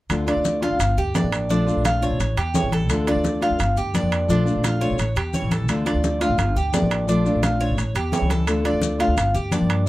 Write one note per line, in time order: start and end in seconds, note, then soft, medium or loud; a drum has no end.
0.10 0.35 D2 medium
0.10 0.27 D3 medium
0.10 0.27 A3 medium
0.10 0.27 D4 medium
0.10 0.25 F4 medium
0.10 high conga soft
0.10 high timbale medium
0.10 maracas medium
0.27 0.62 A3 medium
0.27 0.62 D4 medium
0.27 0.61 F4 medium
0.27 0.61 D5 medium
0.27 high conga soft
0.27 high timbale medium
0.27 maracas soft
0.36 0.69 D2 medium
0.45 high conga medium
0.45 maracas medium
0.62 0.79 A3 medium
0.62 0.79 D4 medium
0.62 0.79 F4 medium
0.62 0.97 F4 medium
0.62 high conga soft
0.62 high timbale medium
0.62 maracas soft
0.71 0.79 D2 medium
0.79 0.96 G1 medium
0.79 muted nylon-string guitar stroke medium
0.79 high conga soft
0.79 high timbale medium
0.79 maracas medium
0.97 1.14 D2 medium
0.97 1.15 G4 medium
0.97 high conga soft
0.97 maracas soft
1.14 1.48 F3 soft
1.14 1.49 A#3 soft
1.14 1.50 D4 soft
1.14 1.50 G4 soft
1.14 1.49 D5 medium
1.14 high conga medium
1.14 high timbale medium
1.14 low timbale medium
1.14 maracas medium
1.23 1.49 A1 medium
1.32 high timbale medium
1.32 maracas soft
1.49 1.74 A#1 medium
1.49 1.66 F3 medium
1.49 1.67 A3 medium
1.49 1.84 D4 medium
1.49 1.66 D4 medium
1.49 1.65 F4 medium
1.49 high conga soft
1.49 maracas medium
1.66 2.02 A3 medium
1.66 2.02 D4 medium
1.66 2.01 F4 medium
1.66 high conga soft
1.66 maracas soft
1.75 2.09 A#1 medium
1.85 2.02 F4 medium
1.85 high conga loud
1.85 high timbale loud
1.85 maracas medium
2.02 2.20 A3 medium
2.02 2.19 D4 medium
2.02 2.19 F4 medium
2.02 2.36 C#5 medium
2.02 high conga soft
2.02 maracas soft
2.10 2.19 A#1 medium
2.19 2.36 A1 medium
2.19 muted nylon-string guitar stroke medium
2.19 high conga soft
2.19 high timbale medium
2.19 maracas medium
2.37 2.54 E2 medium
2.37 2.54 G4 medium
2.37 high conga soft
2.37 high timbale medium
2.37 maracas soft
2.54 2.89 E3 soft
2.54 2.89 G3 medium
2.54 2.89 C#4 soft
2.54 2.90 E4 medium
2.54 2.72 C#5 medium
2.54 high conga medium
2.54 low timbale medium
2.54 maracas medium
2.63 2.89 A1 medium
2.72 3.06 A4 medium
2.72 high conga medium
2.72 high timbale medium
2.72 maracas soft
2.89 3.14 D2 medium
2.89 3.06 D3 medium
2.89 3.07 A3 medium
2.89 3.07 D4 medium
2.89 3.06 F4 medium
2.89 high conga soft
2.89 high timbale medium
2.89 maracas medium
3.07 3.42 A3 medium
3.07 3.41 D4 medium
3.07 3.40 F4 medium
3.07 3.41 D5 medium
3.07 high conga soft
3.07 high timbale medium
3.07 maracas soft
3.15 3.49 D2 medium
3.24 high conga loud
3.24 maracas medium
3.41 3.59 A3 medium
3.41 3.58 D4 medium
3.41 3.58 F4 medium
3.41 3.76 F4 medium
3.41 high conga soft
3.41 high timbale medium
3.41 maracas soft
3.50 3.59 D2 medium
3.59 3.76 G1 medium
3.59 muted nylon-string guitar stroke medium
3.59 high conga soft
3.59 high timbale medium
3.59 maracas medium
3.77 3.93 D2 medium
3.77 3.94 G4 medium
3.77 high conga soft
3.77 maracas soft
3.94 4.27 F3 medium
3.94 4.28 A#3 soft
3.94 4.28 D4 medium
3.94 4.29 G4 medium
3.94 4.29 D5 medium
3.94 high conga medium
3.94 high timbale medium
3.94 maracas medium
4.03 4.30 F2 medium
4.12 high conga soft
4.12 high timbale loud
4.12 maracas soft
4.28 4.54 A#1 medium
4.28 4.46 F3 medium
4.28 4.46 A3 medium
4.28 4.46 D4 medium
4.28 4.64 D4 medium
4.28 4.45 F4 medium
4.28 maracas medium
4.46 4.81 A3 medium
4.46 4.80 D4 medium
4.46 4.79 F4 medium
4.46 high conga soft
4.46 maracas soft
4.55 4.88 A#1 medium
4.64 4.81 F4 medium
4.64 high conga loud
4.64 high timbale loud
4.64 maracas medium
4.81 4.98 A3 medium
4.81 4.98 D4 medium
4.81 4.98 F4 medium
4.81 5.15 C#5 medium
4.81 maracas soft
4.90 4.98 A#1 medium
4.98 5.15 A1 medium
4.98 muted nylon-string guitar stroke medium
4.98 high conga soft
4.98 high timbale medium
4.98 maracas medium
5.16 5.33 E2 medium
5.16 5.33 G4 medium
5.16 high conga soft
5.16 high timbale medium
5.16 maracas soft
5.33 5.68 E3 soft
5.33 5.68 G3 soft
5.33 5.69 C#4 soft
5.33 5.69 E4 medium
5.33 5.51 C#5 medium
5.33 high conga medium
5.33 maracas medium
5.42 5.68 A1 medium
5.51 5.85 A4 medium
5.51 high conga medium
5.51 high timbale medium
5.51 maracas soft
5.68 5.93 D2 medium
5.68 5.85 D3 medium
5.68 5.86 A3 medium
5.68 5.86 D4 medium
5.68 5.84 F4 medium
5.68 high conga soft
5.68 high timbale medium
5.68 maracas medium
5.86 6.21 A3 medium
5.86 6.21 D4 medium
5.86 6.20 F4 medium
5.86 6.20 D5 medium
5.86 high conga soft
5.86 high timbale medium
5.86 maracas soft
5.94 6.28 D2 medium
6.04 high conga medium
6.04 maracas medium
6.21 6.39 A3 medium
6.21 6.38 D4 medium
6.21 6.38 F4 medium
6.21 6.55 F4 medium
6.21 high timbale medium
6.21 maracas soft
6.29 6.37 G#1 medium
6.38 6.55 G1 loud
6.38 muted nylon-string guitar stroke medium
6.38 high conga soft
6.38 high timbale medium
6.38 maracas medium
6.56 6.73 D2 medium
6.56 6.73 G4 medium
6.56 high conga soft
6.56 maracas soft
6.72 7.06 F3 soft
6.72 7.08 A#3 medium
6.72 7.08 D4 medium
6.72 7.08 G4 medium
6.72 7.08 D5 medium
6.72 high conga medium
6.72 high timbale medium
6.72 low timbale medium
6.72 maracas medium
6.82 7.08 A1 medium
6.91 high conga soft
6.91 high timbale loud
6.91 maracas soft
7.07 7.33 A#1 medium
7.07 7.24 F3 medium
7.07 7.25 A3 medium
7.07 7.42 D4 medium
7.07 7.25 D4 medium
7.07 7.24 F4 medium
7.07 high conga soft
7.07 maracas medium
7.25 7.60 A3 medium
7.25 7.60 D4 medium
7.25 7.59 F4 medium
7.25 high conga soft
7.25 maracas soft
7.34 7.67 A#1 medium
7.43 7.60 F4 medium
7.43 high conga loud
7.43 high timbale medium
7.43 maracas medium
7.60 7.77 A3 medium
7.60 7.77 D4 medium
7.60 7.77 F4 medium
7.60 7.94 C#5 medium
7.60 high conga soft
7.60 maracas soft
7.69 7.77 G#1 medium
7.77 7.94 A1 loud
7.77 muted nylon-string guitar stroke medium
7.77 high conga soft
7.77 high timbale medium
7.77 maracas medium
7.95 8.12 E2 medium
7.95 8.12 G4 medium
7.95 high conga soft
7.95 high timbale medium
7.95 maracas soft
8.12 8.46 E3 soft
8.12 8.47 G3 soft
8.12 8.47 C#4 soft
8.12 8.48 E4 medium
8.12 8.30 C#5 medium
8.12 high conga medium
8.12 low timbale medium
8.12 maracas medium
8.21 8.47 C#2 medium
8.30 8.64 A4 medium
8.30 high conga medium
8.30 high timbale medium
8.30 maracas soft
8.47 8.72 D2 medium
8.47 8.64 D3 medium
8.47 8.64 A3 medium
8.47 8.64 D4 medium
8.47 8.63 F4 medium
8.47 high timbale loud
8.47 maracas medium
8.64 9.00 A3 medium
8.64 8.99 D4 medium
8.64 8.98 F4 medium
8.64 8.99 D5 medium
8.64 high conga soft
8.64 high timbale medium
8.64 maracas soft
8.73 9.06 D2 medium
8.82 high conga loud
8.82 maracas medium
8.99 9.17 A3 medium
8.99 9.16 D4 medium
8.99 9.16 F4 medium
8.99 9.34 F4 medium
8.99 high conga soft
8.99 high timbale medium
8.99 maracas soft
9.08 9.16 D2 medium
9.16 9.34 G1 loud
9.16 muted nylon-string guitar stroke medium
9.16 high conga soft
9.16 high timbale medium
9.16 maracas medium
9.34 9.51 D2 medium
9.34 9.51 G4 medium
9.34 high conga soft
9.34 maracas soft
9.51 9.85 F3 medium
9.51 9.86 A#3 medium
9.51 9.86 D4 medium
9.51 9.87 G4 soft
9.51 9.86 D5 medium
9.51 high conga medium
9.51 high timbale medium
9.51 maracas medium
9.61 9.88 G2 medium
9.69 high conga soft
9.69 high timbale loud
9.69 maracas soft